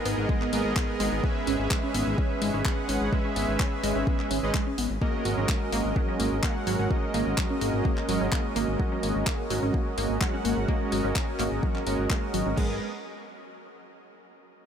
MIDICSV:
0, 0, Header, 1, 5, 480
1, 0, Start_track
1, 0, Tempo, 472441
1, 1257, Time_signature, 4, 2, 24, 8
1, 14895, End_track
2, 0, Start_track
2, 0, Title_t, "Supersaw synth"
2, 0, Program_c, 0, 81
2, 0, Note_on_c, 0, 44, 98
2, 0, Note_on_c, 0, 59, 86
2, 0, Note_on_c, 0, 68, 85
2, 0, Note_on_c, 0, 70, 87
2, 0, Note_on_c, 0, 75, 107
2, 509, Note_off_c, 0, 44, 0
2, 509, Note_off_c, 0, 59, 0
2, 509, Note_off_c, 0, 68, 0
2, 509, Note_off_c, 0, 70, 0
2, 509, Note_off_c, 0, 75, 0
2, 536, Note_on_c, 0, 59, 83
2, 536, Note_on_c, 0, 68, 83
2, 537, Note_on_c, 0, 44, 92
2, 537, Note_on_c, 0, 70, 85
2, 537, Note_on_c, 0, 75, 101
2, 749, Note_off_c, 0, 44, 0
2, 749, Note_off_c, 0, 59, 0
2, 749, Note_off_c, 0, 68, 0
2, 749, Note_off_c, 0, 70, 0
2, 749, Note_off_c, 0, 75, 0
2, 776, Note_on_c, 0, 44, 76
2, 776, Note_on_c, 0, 68, 74
2, 776, Note_on_c, 0, 70, 69
2, 777, Note_on_c, 0, 59, 74
2, 777, Note_on_c, 0, 75, 89
2, 1229, Note_off_c, 0, 44, 0
2, 1229, Note_off_c, 0, 59, 0
2, 1229, Note_off_c, 0, 68, 0
2, 1229, Note_off_c, 0, 70, 0
2, 1229, Note_off_c, 0, 75, 0
2, 1257, Note_on_c, 0, 56, 76
2, 1257, Note_on_c, 0, 61, 68
2, 1257, Note_on_c, 0, 68, 70
2, 1257, Note_on_c, 0, 71, 72
2, 1257, Note_on_c, 0, 76, 84
2, 2669, Note_off_c, 0, 56, 0
2, 2669, Note_off_c, 0, 61, 0
2, 2669, Note_off_c, 0, 68, 0
2, 2669, Note_off_c, 0, 71, 0
2, 2669, Note_off_c, 0, 76, 0
2, 2697, Note_on_c, 0, 56, 85
2, 2697, Note_on_c, 0, 61, 79
2, 2697, Note_on_c, 0, 68, 78
2, 2697, Note_on_c, 0, 71, 80
2, 2697, Note_on_c, 0, 78, 93
2, 3149, Note_off_c, 0, 56, 0
2, 3149, Note_off_c, 0, 61, 0
2, 3149, Note_off_c, 0, 68, 0
2, 3149, Note_off_c, 0, 71, 0
2, 3149, Note_off_c, 0, 78, 0
2, 3176, Note_on_c, 0, 71, 87
2, 3176, Note_on_c, 0, 76, 108
2, 3177, Note_on_c, 0, 56, 93
2, 3177, Note_on_c, 0, 61, 86
2, 3177, Note_on_c, 0, 68, 88
2, 4349, Note_off_c, 0, 56, 0
2, 4349, Note_off_c, 0, 61, 0
2, 4349, Note_off_c, 0, 68, 0
2, 4349, Note_off_c, 0, 71, 0
2, 4349, Note_off_c, 0, 76, 0
2, 4503, Note_on_c, 0, 56, 93
2, 4503, Note_on_c, 0, 61, 83
2, 4503, Note_on_c, 0, 68, 88
2, 4503, Note_on_c, 0, 71, 85
2, 4503, Note_on_c, 0, 75, 107
2, 4597, Note_off_c, 0, 56, 0
2, 4597, Note_off_c, 0, 61, 0
2, 4597, Note_off_c, 0, 68, 0
2, 4597, Note_off_c, 0, 71, 0
2, 4597, Note_off_c, 0, 75, 0
2, 5096, Note_on_c, 0, 56, 80
2, 5096, Note_on_c, 0, 61, 70
2, 5096, Note_on_c, 0, 66, 73
2, 5096, Note_on_c, 0, 70, 73
2, 5096, Note_on_c, 0, 75, 87
2, 6509, Note_off_c, 0, 56, 0
2, 6509, Note_off_c, 0, 61, 0
2, 6509, Note_off_c, 0, 66, 0
2, 6509, Note_off_c, 0, 70, 0
2, 6509, Note_off_c, 0, 75, 0
2, 6536, Note_on_c, 0, 56, 86
2, 6536, Note_on_c, 0, 61, 79
2, 6536, Note_on_c, 0, 66, 76
2, 6536, Note_on_c, 0, 70, 78
2, 6536, Note_on_c, 0, 78, 94
2, 6989, Note_off_c, 0, 56, 0
2, 6989, Note_off_c, 0, 61, 0
2, 6989, Note_off_c, 0, 66, 0
2, 6989, Note_off_c, 0, 70, 0
2, 6989, Note_off_c, 0, 78, 0
2, 7016, Note_on_c, 0, 56, 93
2, 7016, Note_on_c, 0, 61, 85
2, 7016, Note_on_c, 0, 66, 82
2, 7016, Note_on_c, 0, 70, 86
2, 7016, Note_on_c, 0, 75, 101
2, 8189, Note_off_c, 0, 56, 0
2, 8189, Note_off_c, 0, 61, 0
2, 8189, Note_off_c, 0, 66, 0
2, 8189, Note_off_c, 0, 70, 0
2, 8189, Note_off_c, 0, 75, 0
2, 8216, Note_on_c, 0, 56, 86
2, 8216, Note_on_c, 0, 61, 83
2, 8216, Note_on_c, 0, 66, 81
2, 8216, Note_on_c, 0, 70, 86
2, 8216, Note_on_c, 0, 75, 98
2, 8429, Note_off_c, 0, 56, 0
2, 8429, Note_off_c, 0, 61, 0
2, 8429, Note_off_c, 0, 66, 0
2, 8429, Note_off_c, 0, 70, 0
2, 8429, Note_off_c, 0, 75, 0
2, 8456, Note_on_c, 0, 56, 78
2, 8456, Note_on_c, 0, 61, 72
2, 8456, Note_on_c, 0, 66, 71
2, 8456, Note_on_c, 0, 70, 72
2, 8456, Note_on_c, 0, 75, 88
2, 8909, Note_off_c, 0, 56, 0
2, 8909, Note_off_c, 0, 61, 0
2, 8909, Note_off_c, 0, 66, 0
2, 8909, Note_off_c, 0, 70, 0
2, 8909, Note_off_c, 0, 75, 0
2, 8936, Note_on_c, 0, 61, 68
2, 8936, Note_on_c, 0, 70, 69
2, 8936, Note_on_c, 0, 75, 84
2, 8937, Note_on_c, 0, 56, 76
2, 8937, Note_on_c, 0, 66, 67
2, 10349, Note_off_c, 0, 56, 0
2, 10349, Note_off_c, 0, 61, 0
2, 10349, Note_off_c, 0, 66, 0
2, 10349, Note_off_c, 0, 70, 0
2, 10349, Note_off_c, 0, 75, 0
2, 10376, Note_on_c, 0, 56, 83
2, 10376, Note_on_c, 0, 61, 79
2, 10376, Note_on_c, 0, 66, 77
2, 10376, Note_on_c, 0, 70, 79
2, 10376, Note_on_c, 0, 78, 90
2, 10829, Note_off_c, 0, 56, 0
2, 10829, Note_off_c, 0, 61, 0
2, 10829, Note_off_c, 0, 66, 0
2, 10829, Note_off_c, 0, 70, 0
2, 10829, Note_off_c, 0, 78, 0
2, 10856, Note_on_c, 0, 56, 89
2, 10856, Note_on_c, 0, 61, 81
2, 10856, Note_on_c, 0, 66, 83
2, 10856, Note_on_c, 0, 70, 88
2, 10856, Note_on_c, 0, 75, 103
2, 12029, Note_off_c, 0, 56, 0
2, 12029, Note_off_c, 0, 61, 0
2, 12029, Note_off_c, 0, 66, 0
2, 12029, Note_off_c, 0, 70, 0
2, 12029, Note_off_c, 0, 75, 0
2, 12056, Note_on_c, 0, 56, 89
2, 12056, Note_on_c, 0, 61, 86
2, 12056, Note_on_c, 0, 66, 81
2, 12056, Note_on_c, 0, 70, 81
2, 12056, Note_on_c, 0, 75, 100
2, 12269, Note_off_c, 0, 56, 0
2, 12269, Note_off_c, 0, 61, 0
2, 12269, Note_off_c, 0, 66, 0
2, 12269, Note_off_c, 0, 70, 0
2, 12269, Note_off_c, 0, 75, 0
2, 12296, Note_on_c, 0, 61, 73
2, 12296, Note_on_c, 0, 66, 73
2, 12296, Note_on_c, 0, 70, 70
2, 12297, Note_on_c, 0, 56, 74
2, 12297, Note_on_c, 0, 75, 89
2, 12749, Note_off_c, 0, 56, 0
2, 12749, Note_off_c, 0, 61, 0
2, 12749, Note_off_c, 0, 66, 0
2, 12749, Note_off_c, 0, 70, 0
2, 12749, Note_off_c, 0, 75, 0
2, 12777, Note_on_c, 0, 59, 89
2, 12777, Note_on_c, 0, 68, 75
2, 12777, Note_on_c, 0, 70, 75
2, 12777, Note_on_c, 0, 75, 94
2, 12957, Note_off_c, 0, 70, 0
2, 12958, Note_off_c, 0, 59, 0
2, 12958, Note_off_c, 0, 68, 0
2, 12958, Note_off_c, 0, 75, 0
2, 14895, End_track
3, 0, Start_track
3, 0, Title_t, "Synth pluck"
3, 0, Program_c, 1, 84
3, 56, Note_on_c, 1, 59, 78
3, 86, Note_off_c, 1, 59, 0
3, 296, Note_on_c, 1, 56, 100
3, 346, Note_off_c, 1, 56, 0
3, 422, Note_on_c, 1, 59, 76
3, 467, Note_off_c, 1, 59, 0
3, 536, Note_on_c, 1, 58, 74
3, 586, Note_off_c, 1, 58, 0
3, 776, Note_on_c, 1, 59, 82
3, 806, Note_off_c, 1, 59, 0
3, 1015, Note_on_c, 1, 56, 105
3, 1065, Note_off_c, 1, 56, 0
3, 1142, Note_on_c, 1, 59, 82
3, 1187, Note_off_c, 1, 59, 0
3, 1256, Note_on_c, 1, 59, 86
3, 1306, Note_off_c, 1, 59, 0
3, 1496, Note_on_c, 1, 61, 70
3, 1526, Note_off_c, 1, 61, 0
3, 1736, Note_on_c, 1, 56, 99
3, 1786, Note_off_c, 1, 56, 0
3, 1862, Note_on_c, 1, 61, 75
3, 1907, Note_off_c, 1, 61, 0
3, 1977, Note_on_c, 1, 59, 78
3, 2026, Note_off_c, 1, 59, 0
3, 2217, Note_on_c, 1, 61, 82
3, 2246, Note_off_c, 1, 61, 0
3, 2456, Note_on_c, 1, 56, 98
3, 2506, Note_off_c, 1, 56, 0
3, 2582, Note_on_c, 1, 61, 80
3, 2627, Note_off_c, 1, 61, 0
3, 2696, Note_on_c, 1, 59, 83
3, 2746, Note_off_c, 1, 59, 0
3, 2936, Note_on_c, 1, 61, 73
3, 2966, Note_off_c, 1, 61, 0
3, 3176, Note_on_c, 1, 56, 105
3, 3226, Note_off_c, 1, 56, 0
3, 3302, Note_on_c, 1, 61, 78
3, 3347, Note_off_c, 1, 61, 0
3, 3416, Note_on_c, 1, 59, 71
3, 3466, Note_off_c, 1, 59, 0
3, 3656, Note_on_c, 1, 61, 84
3, 3686, Note_off_c, 1, 61, 0
3, 3896, Note_on_c, 1, 56, 106
3, 3946, Note_off_c, 1, 56, 0
3, 4023, Note_on_c, 1, 61, 77
3, 4067, Note_off_c, 1, 61, 0
3, 4136, Note_on_c, 1, 59, 78
3, 4186, Note_off_c, 1, 59, 0
3, 4376, Note_on_c, 1, 61, 78
3, 4406, Note_off_c, 1, 61, 0
3, 4616, Note_on_c, 1, 56, 102
3, 4666, Note_off_c, 1, 56, 0
3, 4742, Note_on_c, 1, 61, 77
3, 4787, Note_off_c, 1, 61, 0
3, 4855, Note_on_c, 1, 59, 78
3, 4905, Note_off_c, 1, 59, 0
3, 5096, Note_on_c, 1, 58, 108
3, 5126, Note_off_c, 1, 58, 0
3, 5336, Note_on_c, 1, 54, 91
3, 5386, Note_off_c, 1, 54, 0
3, 5463, Note_on_c, 1, 61, 74
3, 5507, Note_off_c, 1, 61, 0
3, 5576, Note_on_c, 1, 58, 84
3, 5626, Note_off_c, 1, 58, 0
3, 5816, Note_on_c, 1, 58, 106
3, 5846, Note_off_c, 1, 58, 0
3, 6056, Note_on_c, 1, 54, 103
3, 6106, Note_off_c, 1, 54, 0
3, 6182, Note_on_c, 1, 61, 80
3, 6227, Note_off_c, 1, 61, 0
3, 6296, Note_on_c, 1, 58, 77
3, 6346, Note_off_c, 1, 58, 0
3, 6536, Note_on_c, 1, 58, 97
3, 6566, Note_off_c, 1, 58, 0
3, 6776, Note_on_c, 1, 54, 99
3, 6826, Note_off_c, 1, 54, 0
3, 6902, Note_on_c, 1, 61, 77
3, 6947, Note_off_c, 1, 61, 0
3, 7016, Note_on_c, 1, 58, 85
3, 7066, Note_off_c, 1, 58, 0
3, 7256, Note_on_c, 1, 58, 90
3, 7286, Note_off_c, 1, 58, 0
3, 7496, Note_on_c, 1, 54, 100
3, 7546, Note_off_c, 1, 54, 0
3, 7623, Note_on_c, 1, 61, 74
3, 7667, Note_off_c, 1, 61, 0
3, 7736, Note_on_c, 1, 58, 82
3, 7786, Note_off_c, 1, 58, 0
3, 7976, Note_on_c, 1, 58, 97
3, 8006, Note_off_c, 1, 58, 0
3, 8217, Note_on_c, 1, 54, 97
3, 8266, Note_off_c, 1, 54, 0
3, 8342, Note_on_c, 1, 61, 75
3, 8387, Note_off_c, 1, 61, 0
3, 8456, Note_on_c, 1, 58, 80
3, 8506, Note_off_c, 1, 58, 0
3, 8696, Note_on_c, 1, 58, 104
3, 8726, Note_off_c, 1, 58, 0
3, 8936, Note_on_c, 1, 54, 101
3, 8986, Note_off_c, 1, 54, 0
3, 9062, Note_on_c, 1, 61, 80
3, 9107, Note_off_c, 1, 61, 0
3, 9176, Note_on_c, 1, 58, 72
3, 9226, Note_off_c, 1, 58, 0
3, 9415, Note_on_c, 1, 58, 105
3, 9446, Note_off_c, 1, 58, 0
3, 9656, Note_on_c, 1, 54, 108
3, 9706, Note_off_c, 1, 54, 0
3, 9782, Note_on_c, 1, 61, 76
3, 9827, Note_off_c, 1, 61, 0
3, 9896, Note_on_c, 1, 58, 84
3, 9946, Note_off_c, 1, 58, 0
3, 10136, Note_on_c, 1, 58, 94
3, 10166, Note_off_c, 1, 58, 0
3, 10376, Note_on_c, 1, 54, 101
3, 10426, Note_off_c, 1, 54, 0
3, 10502, Note_on_c, 1, 61, 78
3, 10547, Note_off_c, 1, 61, 0
3, 10616, Note_on_c, 1, 58, 78
3, 10666, Note_off_c, 1, 58, 0
3, 10855, Note_on_c, 1, 58, 111
3, 10886, Note_off_c, 1, 58, 0
3, 11096, Note_on_c, 1, 54, 92
3, 11146, Note_off_c, 1, 54, 0
3, 11222, Note_on_c, 1, 61, 80
3, 11267, Note_off_c, 1, 61, 0
3, 11336, Note_on_c, 1, 58, 83
3, 11386, Note_off_c, 1, 58, 0
3, 11576, Note_on_c, 1, 58, 109
3, 11606, Note_off_c, 1, 58, 0
3, 11816, Note_on_c, 1, 54, 100
3, 11866, Note_off_c, 1, 54, 0
3, 11942, Note_on_c, 1, 61, 76
3, 11987, Note_off_c, 1, 61, 0
3, 12056, Note_on_c, 1, 58, 73
3, 12106, Note_off_c, 1, 58, 0
3, 12296, Note_on_c, 1, 58, 95
3, 12326, Note_off_c, 1, 58, 0
3, 12536, Note_on_c, 1, 54, 104
3, 12586, Note_off_c, 1, 54, 0
3, 12663, Note_on_c, 1, 61, 85
3, 12707, Note_off_c, 1, 61, 0
3, 12777, Note_on_c, 1, 56, 96
3, 13000, Note_off_c, 1, 56, 0
3, 14895, End_track
4, 0, Start_track
4, 0, Title_t, "Analog synth bass"
4, 0, Program_c, 2, 38
4, 56, Note_on_c, 2, 32, 91
4, 149, Note_off_c, 2, 32, 0
4, 182, Note_on_c, 2, 32, 83
4, 266, Note_off_c, 2, 32, 0
4, 536, Note_on_c, 2, 32, 101
4, 629, Note_off_c, 2, 32, 0
4, 662, Note_on_c, 2, 32, 81
4, 746, Note_off_c, 2, 32, 0
4, 1016, Note_on_c, 2, 32, 92
4, 1109, Note_off_c, 2, 32, 0
4, 1142, Note_on_c, 2, 32, 83
4, 1226, Note_off_c, 2, 32, 0
4, 1496, Note_on_c, 2, 32, 98
4, 1589, Note_off_c, 2, 32, 0
4, 1622, Note_on_c, 2, 32, 86
4, 1706, Note_off_c, 2, 32, 0
4, 1976, Note_on_c, 2, 32, 97
4, 2069, Note_off_c, 2, 32, 0
4, 2102, Note_on_c, 2, 32, 83
4, 2186, Note_off_c, 2, 32, 0
4, 2456, Note_on_c, 2, 32, 93
4, 2549, Note_off_c, 2, 32, 0
4, 2582, Note_on_c, 2, 32, 82
4, 2666, Note_off_c, 2, 32, 0
4, 2936, Note_on_c, 2, 32, 93
4, 3029, Note_off_c, 2, 32, 0
4, 3062, Note_on_c, 2, 32, 82
4, 3146, Note_off_c, 2, 32, 0
4, 3416, Note_on_c, 2, 32, 94
4, 3509, Note_off_c, 2, 32, 0
4, 3543, Note_on_c, 2, 32, 81
4, 3627, Note_off_c, 2, 32, 0
4, 3896, Note_on_c, 2, 32, 95
4, 3989, Note_off_c, 2, 32, 0
4, 4022, Note_on_c, 2, 32, 80
4, 4106, Note_off_c, 2, 32, 0
4, 4376, Note_on_c, 2, 32, 97
4, 4469, Note_off_c, 2, 32, 0
4, 4503, Note_on_c, 2, 32, 83
4, 4587, Note_off_c, 2, 32, 0
4, 4856, Note_on_c, 2, 32, 94
4, 4949, Note_off_c, 2, 32, 0
4, 4983, Note_on_c, 2, 32, 84
4, 5067, Note_off_c, 2, 32, 0
4, 5336, Note_on_c, 2, 32, 90
4, 5429, Note_off_c, 2, 32, 0
4, 5463, Note_on_c, 2, 32, 87
4, 5547, Note_off_c, 2, 32, 0
4, 5816, Note_on_c, 2, 32, 90
4, 5909, Note_off_c, 2, 32, 0
4, 5943, Note_on_c, 2, 32, 83
4, 6027, Note_off_c, 2, 32, 0
4, 6297, Note_on_c, 2, 32, 97
4, 6390, Note_off_c, 2, 32, 0
4, 6423, Note_on_c, 2, 32, 79
4, 6507, Note_off_c, 2, 32, 0
4, 6776, Note_on_c, 2, 32, 88
4, 6869, Note_off_c, 2, 32, 0
4, 6903, Note_on_c, 2, 32, 86
4, 6987, Note_off_c, 2, 32, 0
4, 7257, Note_on_c, 2, 32, 92
4, 7350, Note_off_c, 2, 32, 0
4, 7382, Note_on_c, 2, 32, 84
4, 7466, Note_off_c, 2, 32, 0
4, 7736, Note_on_c, 2, 32, 93
4, 7829, Note_off_c, 2, 32, 0
4, 7862, Note_on_c, 2, 32, 83
4, 7946, Note_off_c, 2, 32, 0
4, 8216, Note_on_c, 2, 32, 101
4, 8309, Note_off_c, 2, 32, 0
4, 8342, Note_on_c, 2, 32, 85
4, 8426, Note_off_c, 2, 32, 0
4, 8696, Note_on_c, 2, 32, 93
4, 8789, Note_off_c, 2, 32, 0
4, 8822, Note_on_c, 2, 32, 86
4, 8906, Note_off_c, 2, 32, 0
4, 9176, Note_on_c, 2, 32, 97
4, 9269, Note_off_c, 2, 32, 0
4, 9302, Note_on_c, 2, 32, 85
4, 9386, Note_off_c, 2, 32, 0
4, 9656, Note_on_c, 2, 32, 95
4, 9749, Note_off_c, 2, 32, 0
4, 9782, Note_on_c, 2, 32, 80
4, 9866, Note_off_c, 2, 32, 0
4, 10136, Note_on_c, 2, 32, 95
4, 10229, Note_off_c, 2, 32, 0
4, 10262, Note_on_c, 2, 32, 79
4, 10346, Note_off_c, 2, 32, 0
4, 10616, Note_on_c, 2, 32, 90
4, 10709, Note_off_c, 2, 32, 0
4, 10742, Note_on_c, 2, 32, 84
4, 10826, Note_off_c, 2, 32, 0
4, 11096, Note_on_c, 2, 32, 95
4, 11189, Note_off_c, 2, 32, 0
4, 11222, Note_on_c, 2, 32, 84
4, 11306, Note_off_c, 2, 32, 0
4, 11576, Note_on_c, 2, 32, 92
4, 11669, Note_off_c, 2, 32, 0
4, 11702, Note_on_c, 2, 32, 84
4, 11787, Note_off_c, 2, 32, 0
4, 12056, Note_on_c, 2, 32, 93
4, 12149, Note_off_c, 2, 32, 0
4, 12182, Note_on_c, 2, 32, 77
4, 12266, Note_off_c, 2, 32, 0
4, 12536, Note_on_c, 2, 32, 90
4, 12629, Note_off_c, 2, 32, 0
4, 12663, Note_on_c, 2, 32, 80
4, 12747, Note_off_c, 2, 32, 0
4, 12776, Note_on_c, 2, 32, 99
4, 12999, Note_off_c, 2, 32, 0
4, 14895, End_track
5, 0, Start_track
5, 0, Title_t, "Drums"
5, 56, Note_on_c, 9, 46, 104
5, 157, Note_off_c, 9, 46, 0
5, 296, Note_on_c, 9, 36, 127
5, 397, Note_off_c, 9, 36, 0
5, 423, Note_on_c, 9, 39, 40
5, 525, Note_off_c, 9, 39, 0
5, 537, Note_on_c, 9, 46, 109
5, 638, Note_off_c, 9, 46, 0
5, 776, Note_on_c, 9, 36, 122
5, 777, Note_on_c, 9, 39, 124
5, 877, Note_off_c, 9, 36, 0
5, 879, Note_off_c, 9, 39, 0
5, 1017, Note_on_c, 9, 46, 108
5, 1118, Note_off_c, 9, 46, 0
5, 1255, Note_on_c, 9, 36, 127
5, 1357, Note_off_c, 9, 36, 0
5, 1496, Note_on_c, 9, 46, 104
5, 1598, Note_off_c, 9, 46, 0
5, 1735, Note_on_c, 9, 36, 125
5, 1737, Note_on_c, 9, 39, 125
5, 1837, Note_off_c, 9, 36, 0
5, 1838, Note_off_c, 9, 39, 0
5, 1976, Note_on_c, 9, 46, 113
5, 2077, Note_off_c, 9, 46, 0
5, 2215, Note_on_c, 9, 36, 127
5, 2317, Note_off_c, 9, 36, 0
5, 2455, Note_on_c, 9, 46, 110
5, 2557, Note_off_c, 9, 46, 0
5, 2695, Note_on_c, 9, 36, 127
5, 2696, Note_on_c, 9, 39, 121
5, 2797, Note_off_c, 9, 36, 0
5, 2798, Note_off_c, 9, 39, 0
5, 2935, Note_on_c, 9, 46, 107
5, 3037, Note_off_c, 9, 46, 0
5, 3175, Note_on_c, 9, 36, 124
5, 3277, Note_off_c, 9, 36, 0
5, 3416, Note_on_c, 9, 46, 104
5, 3517, Note_off_c, 9, 46, 0
5, 3655, Note_on_c, 9, 36, 127
5, 3656, Note_on_c, 9, 39, 116
5, 3757, Note_off_c, 9, 36, 0
5, 3758, Note_off_c, 9, 39, 0
5, 3897, Note_on_c, 9, 46, 112
5, 3998, Note_off_c, 9, 46, 0
5, 4135, Note_on_c, 9, 36, 124
5, 4237, Note_off_c, 9, 36, 0
5, 4263, Note_on_c, 9, 39, 36
5, 4365, Note_off_c, 9, 39, 0
5, 4376, Note_on_c, 9, 46, 108
5, 4478, Note_off_c, 9, 46, 0
5, 4615, Note_on_c, 9, 36, 127
5, 4617, Note_on_c, 9, 39, 122
5, 4717, Note_off_c, 9, 36, 0
5, 4719, Note_off_c, 9, 39, 0
5, 4857, Note_on_c, 9, 46, 112
5, 4958, Note_off_c, 9, 46, 0
5, 5095, Note_on_c, 9, 36, 112
5, 5197, Note_off_c, 9, 36, 0
5, 5337, Note_on_c, 9, 46, 101
5, 5438, Note_off_c, 9, 46, 0
5, 5575, Note_on_c, 9, 36, 125
5, 5577, Note_on_c, 9, 39, 112
5, 5677, Note_off_c, 9, 36, 0
5, 5679, Note_off_c, 9, 39, 0
5, 5816, Note_on_c, 9, 46, 101
5, 5918, Note_off_c, 9, 46, 0
5, 6055, Note_on_c, 9, 36, 121
5, 6157, Note_off_c, 9, 36, 0
5, 6296, Note_on_c, 9, 46, 106
5, 6398, Note_off_c, 9, 46, 0
5, 6536, Note_on_c, 9, 36, 115
5, 6537, Note_on_c, 9, 39, 117
5, 6637, Note_off_c, 9, 36, 0
5, 6638, Note_off_c, 9, 39, 0
5, 6776, Note_on_c, 9, 46, 99
5, 6878, Note_off_c, 9, 46, 0
5, 7016, Note_on_c, 9, 36, 114
5, 7117, Note_off_c, 9, 36, 0
5, 7256, Note_on_c, 9, 46, 93
5, 7358, Note_off_c, 9, 46, 0
5, 7496, Note_on_c, 9, 36, 119
5, 7497, Note_on_c, 9, 39, 115
5, 7597, Note_off_c, 9, 36, 0
5, 7598, Note_off_c, 9, 39, 0
5, 7736, Note_on_c, 9, 46, 101
5, 7837, Note_off_c, 9, 46, 0
5, 7976, Note_on_c, 9, 36, 120
5, 8077, Note_off_c, 9, 36, 0
5, 8103, Note_on_c, 9, 39, 36
5, 8205, Note_off_c, 9, 39, 0
5, 8216, Note_on_c, 9, 46, 102
5, 8318, Note_off_c, 9, 46, 0
5, 8456, Note_on_c, 9, 36, 113
5, 8457, Note_on_c, 9, 39, 115
5, 8557, Note_off_c, 9, 36, 0
5, 8558, Note_off_c, 9, 39, 0
5, 8697, Note_on_c, 9, 46, 100
5, 8798, Note_off_c, 9, 46, 0
5, 8936, Note_on_c, 9, 36, 108
5, 9037, Note_off_c, 9, 36, 0
5, 9176, Note_on_c, 9, 46, 93
5, 9278, Note_off_c, 9, 46, 0
5, 9415, Note_on_c, 9, 36, 115
5, 9417, Note_on_c, 9, 39, 118
5, 9517, Note_off_c, 9, 36, 0
5, 9519, Note_off_c, 9, 39, 0
5, 9656, Note_on_c, 9, 46, 100
5, 9758, Note_off_c, 9, 46, 0
5, 9895, Note_on_c, 9, 36, 113
5, 9997, Note_off_c, 9, 36, 0
5, 10136, Note_on_c, 9, 46, 101
5, 10238, Note_off_c, 9, 46, 0
5, 10375, Note_on_c, 9, 36, 113
5, 10377, Note_on_c, 9, 39, 118
5, 10477, Note_off_c, 9, 36, 0
5, 10478, Note_off_c, 9, 39, 0
5, 10616, Note_on_c, 9, 46, 96
5, 10718, Note_off_c, 9, 46, 0
5, 10855, Note_on_c, 9, 36, 108
5, 10957, Note_off_c, 9, 36, 0
5, 11096, Note_on_c, 9, 46, 93
5, 11198, Note_off_c, 9, 46, 0
5, 11335, Note_on_c, 9, 36, 116
5, 11337, Note_on_c, 9, 39, 118
5, 11437, Note_off_c, 9, 36, 0
5, 11438, Note_off_c, 9, 39, 0
5, 11576, Note_on_c, 9, 46, 102
5, 11577, Note_on_c, 9, 39, 37
5, 11678, Note_off_c, 9, 46, 0
5, 11679, Note_off_c, 9, 39, 0
5, 11815, Note_on_c, 9, 36, 114
5, 11917, Note_off_c, 9, 36, 0
5, 11943, Note_on_c, 9, 39, 38
5, 12045, Note_off_c, 9, 39, 0
5, 12056, Note_on_c, 9, 46, 103
5, 12157, Note_off_c, 9, 46, 0
5, 12296, Note_on_c, 9, 36, 117
5, 12297, Note_on_c, 9, 39, 117
5, 12397, Note_off_c, 9, 36, 0
5, 12398, Note_off_c, 9, 39, 0
5, 12536, Note_on_c, 9, 46, 102
5, 12638, Note_off_c, 9, 46, 0
5, 12776, Note_on_c, 9, 36, 115
5, 12776, Note_on_c, 9, 49, 85
5, 12877, Note_off_c, 9, 36, 0
5, 12878, Note_off_c, 9, 49, 0
5, 14895, End_track
0, 0, End_of_file